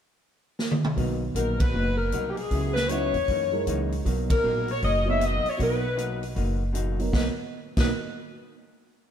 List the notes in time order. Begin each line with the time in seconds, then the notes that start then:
0.59 snare
0.71 high tom
0.84 mid tom
0.96 B1 B2 F#3 A#3 B3 D#4 B4, kick, open hi-hat
1.00 D#4
1.35 A#1 B2 F#3 A#3 D#4 A#4, closed hi-hat
1.60 B4, kick, ride
1.72 F#1 B2 F#3 A#3 D#4
1.98 A#4
2.12 C2 B2 F#3 A#3 D#4, closed hi-hat
2.30 G4
2.36 G#4, open hi-hat
2.51 C#2 C#3 F#3 B3 E4, kick, open hi-hat
2.73 B4, snare
2.88 C#3 F#3 B3 D#4 E4 B4 C#5, closed hi-hat
3.14 E2, open hi-hat
3.28 F#2 E3 A#3 D#4, kick, open hi-hat
3.52 G#3 D#4 E4 A#4
3.67 C#2 F#2 E3 A#3 D#4, closed hi-hat
3.92 open hi-hat
4.05 B1 B2 F#3 A#3 B3 D#4 A#4, kick, open hi-hat
4.30 A#4, kick, ride
4.43 A#1 B2 F#3 A#3 D#4
4.68 C#5, open hi-hat
4.81 F#1 B2 F#3 A#3 D#4 D#5, kick, open hi-hat
5.06 F#3 B3 D#4 C#5
5.10 E5
5.20 B2 F#3 A#3 D#4, closed hi-hat
5.25 D#5
5.45 muted upright bass stroke, open hi-hat
5.50 C#5
5.57 B1 B2 F#3 A#3 B3 D#4 A#4, kick, open hi-hat
5.63 B4
5.96 B2 F#3 A#3 D#4, closed hi-hat
6.23 open hi-hat
6.35 F#1 B2 F#3 A#3 D#4, kick, open hi-hat
6.73 B2 F#3 A#3 D#4, closed hi-hat
6.99 F#3 B3 D#4 A#4, open hi-hat
7.12 B1 B2 F#3 A#3 B3 D#4 A#4 B4, kick, snare
7.77 B1 B2 F#3 A#3 B3 D#4 A#4 B4, kick, snare, crash